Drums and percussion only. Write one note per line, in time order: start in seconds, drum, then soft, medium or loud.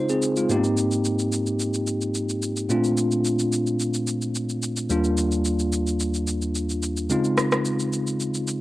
0.09 shaker soft
0.22 shaker medium
0.36 shaker medium
0.50 shaker medium
0.64 shaker soft
0.77 shaker medium
0.91 shaker medium
1.05 shaker medium
1.19 shaker soft
1.32 shaker medium
1.47 shaker soft
1.60 shaker medium
1.74 shaker soft
1.87 shaker medium
2.01 shaker soft
2.15 shaker medium
2.29 shaker soft
2.42 shaker medium
2.57 shaker medium
2.70 shaker medium
2.84 shaker soft
2.97 shaker medium
3.11 shaker soft
3.25 shaker medium
3.39 shaker soft
3.53 shaker medium
3.67 shaker soft
3.80 shaker medium
3.94 shaker soft
4.07 shaker medium
4.22 shaker soft
4.35 shaker medium
4.49 shaker soft
4.63 shaker medium
4.77 shaker medium
4.90 shaker medium
5.04 shaker soft
5.18 shaker medium
5.32 shaker soft
5.45 shaker medium
5.59 shaker soft
5.73 shaker medium
5.87 shaker soft
6.00 shaker medium
6.14 shaker soft
6.27 shaker medium
6.42 shaker soft
6.55 shaker medium
6.70 shaker soft
6.83 shaker medium
6.97 shaker medium
7.10 shaker medium
7.24 shaker soft
7.38 cross-stick medium
7.38 shaker medium
7.52 cross-stick medium
7.52 shaker medium
7.65 shaker medium
7.80 shaker soft
7.93 shaker medium
8.07 shaker soft
8.20 shaker medium
8.34 shaker medium
8.47 shaker medium